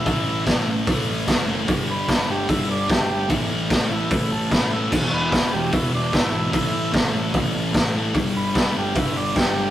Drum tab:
CC |--------|--------|--------|x-------|
HH |o-o-o-o-|o-o-o-o-|o-o-o-o-|--o-o-o-|
SD |--o---o-|--o---o-|--o---o-|--o---o-|
BD |o-o-o-o-|o-o-o-o-|o-o-o-o-|o-o-o-o-|

CC |--------|--------|
HH |o-o-o-o-|o-o-o-o-|
SD |--o---o-|--o---o-|
BD |o-o-o-o-|o-o-o-o-|